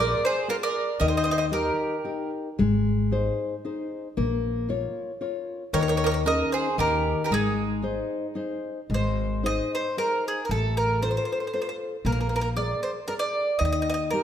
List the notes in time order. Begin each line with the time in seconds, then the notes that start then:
Already playing: A#1 G#4 A#4 D5
0.00 A#4 D5
0.25 G#4 C5
0.48 F4 G#4 A#4 D5
0.63 A#4 D5
1.00 D#2 D#3 A#4 D#5
1.08 C5 D#5
1.17 C5 D#5
1.24 C5 D#5
1.31 C5 D#5
1.38 C5 D#5
1.51 D#4 G4 A#4
2.04 D#4 G4 A#4
2.59 G#1 G#3
3.11 D#4 G#4 C5
3.65 D#4 G#4 C5
4.17 A#1 A#3
4.69 F4 A#4 C#5
5.21 F4 A#4 C#5
5.73 D#2 D#3 A#4 C#5
5.81 A#4 C#5
5.88 A#4 C#5
5.97 A#4 C#5
6.04 A#4 C#5
6.12 A#4 C#5
6.25 C#4 D#4 G#4 A#4 D#5
6.52 G#4 C5
6.78 D#2 D#3 G4 A#4
7.24 G4 A#4
7.31 G#1 G#3 D#4 G#4
7.82 D#4 G#4 C5
8.35 D#4 G#4 C5
8.90 G#1 G#3
8.94 C5
9.43 D#4 G#4 C5 D#5
9.75 C5
9.97 D#4 G#4 A#4 C5
10.28 G#4
10.45 A#4
10.49 A1 A3 A4
10.77 A#4
11.02 F4 A4 C5
11.11 C5
11.17 C5
11.25 C5
11.32 C5
11.40 C5
11.47 C5
11.53 F4 A4 C5
11.62 C5
11.69 C5
12.05 A#1 A#3 A#4
12.12 A#4
12.20 A#4
12.29 A#4
12.36 A#4
12.41 A#4
12.56 G#4 A#4 D5
12.83 C5
13.08 G#4 A#4 D5
13.19 D5
13.59 D#2 D#3 D#5
13.65 D#5
13.72 D#5
13.82 D#5
13.90 D#5
13.94 D#5
14.11 D#4 G4 A#4